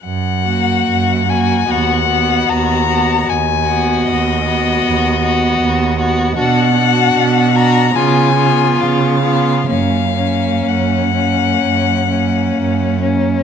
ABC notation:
X:1
M:4/4
L:1/8
Q:1/4=74
K:F#
V:1 name="Violin"
f3 g f2 a2 | g2 d4- d z | f3 a g2 e2 | e2 f4- f z |]
V:2 name="Violin"
z F2 F F F2 F | z F2 F2 F2 F | F F2 F E E2 E | C C2 C2 C2 C |]
V:3 name="Viola"
z A,2 A, B, B,2 B, | z B,2 B,2 B,2 B, | =D D2 D B, B,2 B, | A, A,2 A,2 A,2 A, |]
V:4 name="Cello" clef=bass
F,,2 F,,2 D,,2 D,,2 | D,,2 D,,2 D,,2 D,,2 | B,,2 B,,2 C,2 C,2 | F,,2 F,,2 F,,2 F,,2 |]